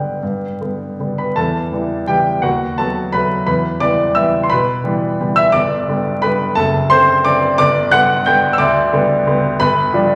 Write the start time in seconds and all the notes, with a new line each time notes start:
Already playing: G2 D3 G3 B3 F#5 G5
0.23 G2
0.61 D3 G3 B3
0.99 D3 G3 B3
1.18 B4 B5
1.36 E2 A4 A5
1.72 E3 G3 B3
2.08 E3 G3 B3 G4 G5
2.42 D#2 F#4 F#5
2.78 F#3 A3 B3 A4 A5
3.12 F#3 A3 B3 B4 B5
3.46 E2 B4 B5
3.80 E3 G3 B3 D5 D6
4.15 E3 G3 B3 E5 E6
4.43 C6
4.50 B2 B4 B5
4.84 E3 G3 B3
5.20 E3 G3 B3
5.36 E5 E6
5.52 G1 D5 D6
5.88 D3 G3 B3
6.22 D3 G3 B3 B4 B5
6.55 F#1 A4 A5
6.90 D3 A3 C4 C5 C6
7.25 D3 A3 C4 D5 D6
7.58 G1 D5 D6
7.92 D3 G3 B3 F#5 F#6
8.26 D3 G3 B3 G5 G6
8.53 E6
8.58 D2 D5 D6
8.93 D3 G3 B3
9.26 D3 G3 B3
9.60 G1 B4 B5
9.93 F3 G3 D4